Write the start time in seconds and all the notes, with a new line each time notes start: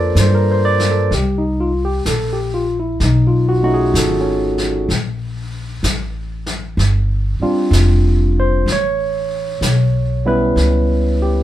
Already playing: F2 F4 A4 A#4 B4 C5 D5
0.15 G2, snare, hi-hat pedal
0.20 C5
0.35 A#4
0.51 C5
0.65 D5
0.79 snare
0.91 A4
1.11 C2 G4, brush sweep, snare
1.38 D#4
1.60 F4
1.85 G4
2.05 A#1 A4, snare, hi-hat pedal
2.33 G4
2.54 F4
2.80 E4
3.00 B1 D#4, brush sweep, snare
3.27 F4
3.49 F#4
3.63 A3 C#4 D#4 F#4
3.74 G#4
3.94 G#1 A4, snare, hi-hat pedal
4.21 C#4
4.58 snare
4.89 A#1, brush sweep, snare
5.83 A1, snare, hi-hat pedal
6.46 snare
6.77 G1, brush sweep, snare
7.40 G3 C4 D4 F4, muted upright bass stroke
7.71 F1, snare, hi-hat pedal
8.40 C5
8.66 A1, brush sweep, snare
8.72 C#5
9.61 B1, snare, hi-hat pedal
10.25 G3 B3 C#4 E4 B4
10.56 C#2, brush sweep, snare
11.22 G4